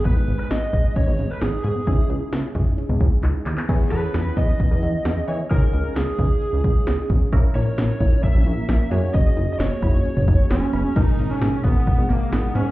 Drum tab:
CC |----------------|----------------|x---------------|----------------|
HH |x-x-x-x-x-x-x-x-|x-x-x-x-x-x-x-x-|x-x-x-x-x-x-x-x-|x-x-x-x-x-x-x-x-|
CB |----------------|----------------|----------------|----------------|
CP |----------------|------------x-xx|----------------|----------------|
SD |----o-------o---|----o-----------|----o-------o---|----o-------o---|
T2 |----------------|------o--o------|----------------|----------------|
BD |o-----o-o-------|o-----o---o-----|o-----o-o-------|o-----o---o---o-|

CC |----------------|----------------|x---------------|
HH |x-x-x-x-x-x-x-x-|x-x-x-x-x-x-x-x-|x-x-x-x-x-x-x-x-|
CB |----------------|------x-------x-|----------------|
CP |----------------|----------------|----------------|
SD |----o-------o---|----o-------o---|----o-------o---|
T2 |----------------|------o--o------|----------------|
BD |o-----o-o-------|o-----o---o-----|o-----o-o-------|